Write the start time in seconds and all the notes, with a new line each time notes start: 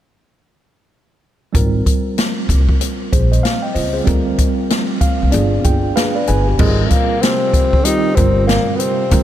1.53 G#1 G3 C4 F4 A#4, kick, closed hi-hat
1.86 kick, closed hi-hat
2.18 snare, closed hi-hat
2.49 C2, kick, closed hi-hat
2.69 kick
2.81 closed hi-hat
3.12 A#1 G#4 C5, kick, closed hi-hat
3.32 C5 D#5, closed hi-hat
3.43 F5, snare, closed hi-hat
3.62 D#5 G5
3.74 C#2 C5 D#5, open hi-hat
3.93 G#4 C5
4.04 D2 G3 C4 F4 A#4, kick, closed hi-hat
4.38 kick, closed hi-hat
4.70 snare, closed hi-hat
5.01 F5, kick, closed hi-hat
5.22 C2
5.30 G1 B3 D4 F4 G#4 D5, closed hi-hat
5.64 G1 F4 G#4 G5, kick, closed hi-hat
5.96 G#4 B4 F5, snare, closed hi-hat
6.15 B4 D5
6.27 G1 G#4 B4 G#5, closed hi-hat
6.48 G4
6.59 G#1 G#2 G3 G#3 C4 F4 A#4, kick, crash
6.86 A2 A3
6.90 A#2 A#3, kick, closed hi-hat
7.21 C3 C4, snare, closed hi-hat
7.54 kick, closed hi-hat
7.73 kick
7.83 D#3 G3 C4 D#4 F4 G4, closed hi-hat
8.15 G1 C3 G3 C4 F4 A#4, kick, closed hi-hat
8.47 A#2 A#3, snare, closed hi-hat
8.75 B2 B3
8.79 C3 C4, closed hi-hat
9.11 D2 G3 C4 F4 A#4, kick, closed hi-hat